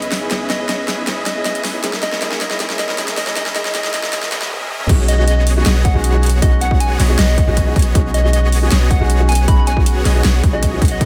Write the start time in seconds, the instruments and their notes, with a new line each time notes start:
Already playing: 808-style bass C#2, felt piano B3 E4 G#4, supersaw synth C#4 G#4 B4 D#5 E5, riser
0.02 soft synth lead D#5, closed hi-hat
0.12 snare, open hi-hat
0.20 felt piano B3 D#4 E4 G#4
0.30 808-style bass C#2, felt piano B3 D#4 E4 G#4, supersaw synth C#4 G#4 B4 D#5 E5, snare, closed hi-hat
0.50 soft synth lead D#5, snare, closed hi-hat
0.59 felt piano B3 E4 G#4, soft synth lead D#5
0.69 soft synth lead D#5, snare, closed hi-hat
0.79 soft synth lead D#5
0.88 snare, closed hi-hat
0.97 felt piano B3 D#4 E4 G#4
1.06 808-style bass C#2, felt piano B3 D#4 E4 G#4, supersaw synth C#4 G#4 B4 D#5 E5, snare, closed hi-hat
1.26 soft synth lead D#5, snare, closed hi-hat
1.35 felt piano B3 E4 G#4, soft synth lead D#5
1.45 soft synth lead D#5, snare, closed hi-hat
1.55 soft synth lead D#5, closed hi-hat
1.65 snare, open hi-hat
1.73 felt piano B3 D#4 E4 G#4
1.83 808-style bass F#1, felt piano A#3 D#4 E4 G#4, supersaw synth C#4 G#4 A#4 D#5 E5, snare, closed hi-hat
1.93 snare
2.03 soft synth lead D#5, snare, closed hi-hat
2.11 felt piano A#3 D#4 E4 G#4, snare
2.21 808-style bass F#1, felt piano A#3 D#4 E4 G#4, supersaw synth C#4 G#4 A#4 D#5 E5, snare, closed hi-hat
2.32 snare
2.41 soft synth lead D#5, snare, closed hi-hat
2.50 felt piano A#3 D#4 E4 G#4, soft synth lead D#5, snare
2.59 808-style bass F#1, felt piano A#3 D#4 E4 G#4, supersaw synth C#4 G#4 A#4 D#5 E5, snare, closed hi-hat
2.70 snare
2.79 soft synth lead D#5, snare, closed hi-hat
2.88 felt piano A#3 D#4 E4 G#4, soft synth lead D#5, snare
2.97 808-style bass F#1, felt piano A#3 D#4 E4 G#4, supersaw synth C#4 G#4 A#4 D#5 E5, snare, closed hi-hat
3.08 snare, closed hi-hat
3.17 soft synth lead D#5, snare, open hi-hat
3.26 felt piano A#3 D#4 E4 G#4, soft synth lead D#5, snare
3.35 808-style bass F#1, felt piano A#3 D#4 E4 G#4, supersaw synth C#4 G#4 A#4 D#5 E5, soft synth lead D#5, snare, closed hi-hat
3.46 soft synth lead D#5, snare
3.55 808-style bass F#1, felt piano A#3 D#4 E4 G#4, supersaw synth C#4 G#4 A#4 D#5 E5, soft synth lead D#5, snare, closed hi-hat
3.65 soft synth lead D#5, snare
3.74 808-style bass F#1, felt piano A#3 D#4 E4 G#4, supersaw synth C#4 G#4 A#4 D#5 E5, soft synth lead D#5, snare, closed hi-hat
3.84 soft synth lead D#5, snare
3.93 808-style bass F#1, felt piano A#3 D#4 E4 G#4, supersaw synth C#4 G#4 A#4 D#5 E5, soft synth lead D#5, snare, closed hi-hat
4.03 soft synth lead D#5, snare
4.12 808-style bass F#1, felt piano A#3 D#4 E4 G#4, supersaw synth C#4 G#4 A#4 D#5 E5, soft synth lead D#5, snare, closed hi-hat, swell
4.23 soft synth lead D#5, snare
4.31 808-style bass F#1, felt piano A#3 D#4 E4 G#4, supersaw synth C#4 G#4 A#4 D#5 E5, soft synth lead D#5, snare, closed hi-hat
4.42 soft synth lead D#5, snare
4.51 supersaw synth C#4 G#4 A#4 D#5 E5, high tom
4.61 high tom
4.70 supersaw synth C#4 G#4 A#4 D#5 E5
4.80 mid tom
4.88 808-style bass B1, felt piano G#3 C#4 D#4 F#4, supersaw synth B3 F#4 G#4 C#5 D#5, kick, closed hi-hat, crash
5.08 soft synth lead D#5, closed hi-hat
5.17 felt piano G#3 C#4 D#4 F#4, soft synth lead D#5
5.28 soft synth lead D#5, closed hi-hat
5.37 soft synth lead D#5
5.47 open hi-hat
5.55 felt piano G#3 C#4 D#4 F#4
5.66 808-style bass B1, supersaw synth B3 F#4 G#4 C#5 D#5, snare, closed hi-hat
5.85 soft synth lead F#5, kick, closed hi-hat
5.94 808-style bass B1, felt piano G#3 C#4 D#4 F#4, supersaw synth B3 F#4 G#4 C#5 F#5
6.04 closed hi-hat
6.13 felt piano G#3 C#4 D#4 F#4
6.23 closed hi-hat
6.26 closed hi-hat
6.30 closed hi-hat
6.41 felt piano G#3 C#4 D#4 F#4, soft synth lead D#5, kick, closed hi-hat
6.61 soft synth lead F#5, closed hi-hat
6.70 felt piano G#3 C#4 D#4 F#4, kick
6.80 soft synth lead G#5, closed hi-hat
7.00 808-style bass B1, supersaw synth B3 F#4 G#4 C#5 D#5, snare, open hi-hat
7.08 felt piano G#3 C#4 D#4 F#4
7.19 808-style bass B1, supersaw synth B3 F#4 G#4 C#5 F#5, soft synth lead D#5, snare, closed hi-hat
7.38 kick, closed hi-hat
7.46 808-style bass B1, felt piano G#3 C#4 D#4 F#4, supersaw synth B3 F#4 G#4 C#5 D#5
7.57 kick, closed hi-hat
7.66 felt piano G#3 C#4 D#4 F#4
7.76 808-style bass B1, supersaw synth B3 F#4 G#4 C#5 D#5, kick, closed hi-hat
7.79 closed hi-hat
7.82 closed hi-hat
7.94 808-style bass B1, felt piano G#3 C#4 D#4 F#4, supersaw synth B3 F#4 G#4 C#5 D#5, kick, closed hi-hat
8.14 soft synth lead D#5, closed hi-hat
8.23 felt piano G#3 C#4 D#4 F#4, soft synth lead D#5
8.33 soft synth lead D#5, closed hi-hat
8.43 soft synth lead D#5
8.52 open hi-hat
8.61 felt piano G#3 C#4 D#4 F#4
8.71 808-style bass B1, supersaw synth B3 F#4 G#4 C#5 D#5, snare, closed hi-hat
8.91 soft synth lead F#5, kick, closed hi-hat
8.99 808-style bass B1, felt piano G#3 C#4 D#4 F#4, supersaw synth B3 F#4 G#4 C#5 F#5
9.10 closed hi-hat
9.18 felt piano G#3 C#4 D#4 F#4
9.29 soft synth lead G#5, closed hi-hat
9.32 closed hi-hat
9.35 closed hi-hat
9.47 felt piano G#3 C#4 D#4 F#4, soft synth lead B5, kick, closed hi-hat
9.58 soft synth lead B5
9.67 soft synth lead G#5, closed hi-hat
9.76 felt piano G#3 C#4 D#4 F#4, kick
9.86 closed hi-hat
10.05 808-style bass B1, supersaw synth B3 F#4 G#4 C#5 D#5, snare, open hi-hat
10.14 felt piano G#3 C#4 D#4 F#4
10.24 808-style bass B1, supersaw synth B3 F#4 G#4 C#5 F#5, snare, closed hi-hat
10.43 808-style bass B1, supersaw synth B3 F#4 G#4 C#5 D#5, kick, closed hi-hat
10.52 felt piano G#3 C#4 D#4 F#4, soft synth lead D#5
10.63 kick, closed hi-hat
10.71 felt piano G#3 C#4 D#4 F#4
10.82 808-style bass B1, supersaw synth B3 F#4 G#4 C#5 F#5, kick, closed hi-hat
10.85 closed hi-hat
10.88 soft synth lead D#5, closed hi-hat
11.00 808-style bass C#2, felt piano B3 D#4 E4 G#4, supersaw synth C#4 G#4 B4 D#5 E5, kick, closed hi-hat